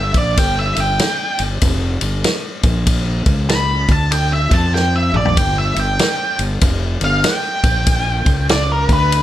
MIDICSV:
0, 0, Header, 1, 4, 480
1, 0, Start_track
1, 0, Tempo, 625000
1, 288, Time_signature, 4, 2, 24, 8
1, 7086, End_track
2, 0, Start_track
2, 0, Title_t, "Lead electric guitar"
2, 0, Program_c, 0, 29
2, 0, Note_on_c, 0, 76, 77
2, 125, Note_off_c, 0, 76, 0
2, 137, Note_on_c, 0, 74, 84
2, 288, Note_off_c, 0, 74, 0
2, 293, Note_on_c, 0, 79, 96
2, 446, Note_off_c, 0, 79, 0
2, 451, Note_on_c, 0, 76, 96
2, 605, Note_off_c, 0, 76, 0
2, 616, Note_on_c, 0, 79, 91
2, 1077, Note_off_c, 0, 79, 0
2, 2684, Note_on_c, 0, 83, 98
2, 2996, Note_off_c, 0, 83, 0
2, 3011, Note_on_c, 0, 81, 79
2, 3162, Note_off_c, 0, 81, 0
2, 3166, Note_on_c, 0, 79, 80
2, 3321, Note_off_c, 0, 79, 0
2, 3326, Note_on_c, 0, 76, 87
2, 3482, Note_off_c, 0, 76, 0
2, 3482, Note_on_c, 0, 81, 88
2, 3640, Note_off_c, 0, 81, 0
2, 3644, Note_on_c, 0, 79, 86
2, 3801, Note_off_c, 0, 79, 0
2, 3807, Note_on_c, 0, 76, 91
2, 3962, Note_off_c, 0, 76, 0
2, 3968, Note_on_c, 0, 74, 85
2, 4123, Note_off_c, 0, 74, 0
2, 4128, Note_on_c, 0, 79, 78
2, 4283, Note_off_c, 0, 79, 0
2, 4287, Note_on_c, 0, 76, 79
2, 4442, Note_off_c, 0, 76, 0
2, 4452, Note_on_c, 0, 79, 92
2, 4916, Note_off_c, 0, 79, 0
2, 5409, Note_on_c, 0, 77, 100
2, 5564, Note_off_c, 0, 77, 0
2, 5564, Note_on_c, 0, 79, 87
2, 6499, Note_off_c, 0, 79, 0
2, 6534, Note_on_c, 0, 74, 88
2, 6688, Note_off_c, 0, 74, 0
2, 6696, Note_on_c, 0, 70, 86
2, 6849, Note_off_c, 0, 70, 0
2, 6859, Note_on_c, 0, 71, 99
2, 7086, Note_off_c, 0, 71, 0
2, 7086, End_track
3, 0, Start_track
3, 0, Title_t, "Fingered electric bass"
3, 0, Program_c, 1, 33
3, 0, Note_on_c, 1, 31, 85
3, 89, Note_off_c, 1, 31, 0
3, 108, Note_on_c, 1, 34, 93
3, 275, Note_off_c, 1, 34, 0
3, 289, Note_on_c, 1, 31, 88
3, 569, Note_off_c, 1, 31, 0
3, 592, Note_on_c, 1, 31, 79
3, 757, Note_off_c, 1, 31, 0
3, 1073, Note_on_c, 1, 31, 71
3, 1237, Note_off_c, 1, 31, 0
3, 1244, Note_on_c, 1, 29, 91
3, 1526, Note_off_c, 1, 29, 0
3, 1549, Note_on_c, 1, 31, 70
3, 1715, Note_off_c, 1, 31, 0
3, 2026, Note_on_c, 1, 34, 93
3, 2476, Note_off_c, 1, 34, 0
3, 2504, Note_on_c, 1, 37, 96
3, 2956, Note_off_c, 1, 37, 0
3, 2987, Note_on_c, 1, 38, 90
3, 3437, Note_off_c, 1, 38, 0
3, 3466, Note_on_c, 1, 41, 84
3, 3917, Note_off_c, 1, 41, 0
3, 3942, Note_on_c, 1, 34, 91
3, 4111, Note_off_c, 1, 34, 0
3, 4126, Note_on_c, 1, 31, 93
3, 4408, Note_off_c, 1, 31, 0
3, 4427, Note_on_c, 1, 31, 78
3, 4594, Note_off_c, 1, 31, 0
3, 4908, Note_on_c, 1, 31, 70
3, 5074, Note_off_c, 1, 31, 0
3, 5084, Note_on_c, 1, 29, 87
3, 5367, Note_off_c, 1, 29, 0
3, 5386, Note_on_c, 1, 31, 78
3, 5554, Note_off_c, 1, 31, 0
3, 5866, Note_on_c, 1, 34, 92
3, 6319, Note_off_c, 1, 34, 0
3, 6345, Note_on_c, 1, 37, 87
3, 6799, Note_off_c, 1, 37, 0
3, 6829, Note_on_c, 1, 38, 88
3, 7086, Note_off_c, 1, 38, 0
3, 7086, End_track
4, 0, Start_track
4, 0, Title_t, "Drums"
4, 108, Note_on_c, 9, 51, 70
4, 111, Note_on_c, 9, 36, 101
4, 185, Note_off_c, 9, 51, 0
4, 188, Note_off_c, 9, 36, 0
4, 287, Note_on_c, 9, 51, 98
4, 289, Note_on_c, 9, 36, 100
4, 364, Note_off_c, 9, 51, 0
4, 366, Note_off_c, 9, 36, 0
4, 587, Note_on_c, 9, 51, 67
4, 663, Note_off_c, 9, 51, 0
4, 763, Note_on_c, 9, 51, 87
4, 768, Note_on_c, 9, 38, 107
4, 840, Note_off_c, 9, 51, 0
4, 845, Note_off_c, 9, 38, 0
4, 1064, Note_on_c, 9, 51, 71
4, 1141, Note_off_c, 9, 51, 0
4, 1240, Note_on_c, 9, 51, 92
4, 1245, Note_on_c, 9, 36, 101
4, 1317, Note_off_c, 9, 51, 0
4, 1321, Note_off_c, 9, 36, 0
4, 1544, Note_on_c, 9, 51, 67
4, 1620, Note_off_c, 9, 51, 0
4, 1722, Note_on_c, 9, 51, 82
4, 1726, Note_on_c, 9, 38, 99
4, 1799, Note_off_c, 9, 51, 0
4, 1803, Note_off_c, 9, 38, 0
4, 2022, Note_on_c, 9, 51, 66
4, 2025, Note_on_c, 9, 36, 102
4, 2099, Note_off_c, 9, 51, 0
4, 2102, Note_off_c, 9, 36, 0
4, 2201, Note_on_c, 9, 51, 96
4, 2203, Note_on_c, 9, 36, 101
4, 2278, Note_off_c, 9, 51, 0
4, 2279, Note_off_c, 9, 36, 0
4, 2503, Note_on_c, 9, 51, 62
4, 2505, Note_on_c, 9, 36, 104
4, 2579, Note_off_c, 9, 51, 0
4, 2582, Note_off_c, 9, 36, 0
4, 2683, Note_on_c, 9, 51, 81
4, 2688, Note_on_c, 9, 38, 109
4, 2760, Note_off_c, 9, 51, 0
4, 2765, Note_off_c, 9, 38, 0
4, 2983, Note_on_c, 9, 51, 61
4, 2986, Note_on_c, 9, 36, 91
4, 3060, Note_off_c, 9, 51, 0
4, 3062, Note_off_c, 9, 36, 0
4, 3161, Note_on_c, 9, 51, 79
4, 3238, Note_off_c, 9, 51, 0
4, 3465, Note_on_c, 9, 36, 104
4, 3465, Note_on_c, 9, 51, 64
4, 3542, Note_off_c, 9, 36, 0
4, 3542, Note_off_c, 9, 51, 0
4, 3649, Note_on_c, 9, 38, 52
4, 3726, Note_off_c, 9, 38, 0
4, 3947, Note_on_c, 9, 45, 76
4, 4024, Note_off_c, 9, 45, 0
4, 4034, Note_on_c, 9, 43, 78
4, 4111, Note_off_c, 9, 43, 0
4, 4124, Note_on_c, 9, 36, 103
4, 4124, Note_on_c, 9, 51, 91
4, 4201, Note_off_c, 9, 36, 0
4, 4201, Note_off_c, 9, 51, 0
4, 4426, Note_on_c, 9, 51, 65
4, 4503, Note_off_c, 9, 51, 0
4, 4602, Note_on_c, 9, 51, 82
4, 4607, Note_on_c, 9, 38, 104
4, 4679, Note_off_c, 9, 51, 0
4, 4684, Note_off_c, 9, 38, 0
4, 4907, Note_on_c, 9, 51, 66
4, 4983, Note_off_c, 9, 51, 0
4, 5079, Note_on_c, 9, 51, 91
4, 5083, Note_on_c, 9, 36, 104
4, 5156, Note_off_c, 9, 51, 0
4, 5160, Note_off_c, 9, 36, 0
4, 5383, Note_on_c, 9, 51, 68
4, 5460, Note_off_c, 9, 51, 0
4, 5559, Note_on_c, 9, 51, 93
4, 5564, Note_on_c, 9, 38, 103
4, 5636, Note_off_c, 9, 51, 0
4, 5640, Note_off_c, 9, 38, 0
4, 5864, Note_on_c, 9, 51, 68
4, 5865, Note_on_c, 9, 36, 102
4, 5941, Note_off_c, 9, 51, 0
4, 5942, Note_off_c, 9, 36, 0
4, 6041, Note_on_c, 9, 51, 94
4, 6043, Note_on_c, 9, 36, 106
4, 6117, Note_off_c, 9, 51, 0
4, 6120, Note_off_c, 9, 36, 0
4, 6344, Note_on_c, 9, 51, 69
4, 6345, Note_on_c, 9, 36, 106
4, 6421, Note_off_c, 9, 51, 0
4, 6422, Note_off_c, 9, 36, 0
4, 6522, Note_on_c, 9, 51, 82
4, 6527, Note_on_c, 9, 38, 112
4, 6599, Note_off_c, 9, 51, 0
4, 6604, Note_off_c, 9, 38, 0
4, 6827, Note_on_c, 9, 36, 102
4, 6827, Note_on_c, 9, 51, 61
4, 6904, Note_off_c, 9, 36, 0
4, 6904, Note_off_c, 9, 51, 0
4, 7006, Note_on_c, 9, 51, 85
4, 7083, Note_off_c, 9, 51, 0
4, 7086, End_track
0, 0, End_of_file